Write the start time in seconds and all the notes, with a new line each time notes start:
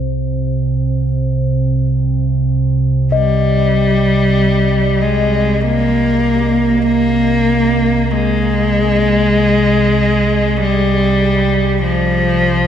Already playing: C2 C3 C5
3.12 G3 D#5
5.01 G#3
5.62 A#3
6.86 A#3
8.11 G#3
10.58 G3
11.83 F3